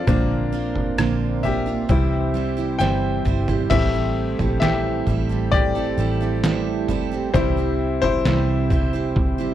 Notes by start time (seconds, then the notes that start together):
Already playing: C4 D4 F4 D5
0.07 A#1 A#2 D3 A#3 C4 D4 F4 A#4, kick, floor tom
0.52 A#3 C4 F4 A#4
0.75 floor tom
0.98 A#1 A#2 D3 A#3 C4 F4 A#4, cross-stick
1.43 A#3 C4 F4 G4 A#4 E5, floor tom
1.66 A#3 C4 F4 A#4
1.89 C2 C3 E3 G3 C4 E4 G4 C5, kick, floor tom
2.34 G3 C4 E4 C5
2.57 G3 C4 E4 C5
2.79 G1 C3 E3 G3 C4 E4 C5 G5, snare
3.25 G1 G3 C4 E4 C5, mid tom
3.48 G3 C4 E4 C5, floor tom
3.70 A1 A2 E3 G3 A3 C4 E4 G4 A4 E5, kick, floor tom, crash
3.93 G3 C4 E4 A4
4.39 A#1 G3 C4 E4 A4, floor tom
4.60 A2 E3 G3 C4 E4 G4 A4 E5, snare
5.07 A1 G3 C4 E4 A4, floor tom
5.29 G3 C4 E4 A4
5.51 G4 D5, kick, floor tom
5.75 G3 C4 E4 A4
5.98 A1 G3 C4 E4 A4
6.21 G3 C4 E4 A4
6.43 A2 E3 G3 C4 E4 A4, snare
6.88 G3 C4 E4 A4, floor tom
7.12 G3 C4 E4 A4
7.34 C2 C3 E3 G3 C4 E4 C5, kick, floor tom
7.57 G3 C4 E4 C5
8.02 G3 C4 E4 C5, floor tom
8.25 C2 C3 E3 G3 C4 E4 C5, snare
8.70 G3 C4 E4 C5, kick, floor tom
8.93 G3 C4 E4 C5
9.16 kick, floor tom
9.38 G3 C4 E4 C5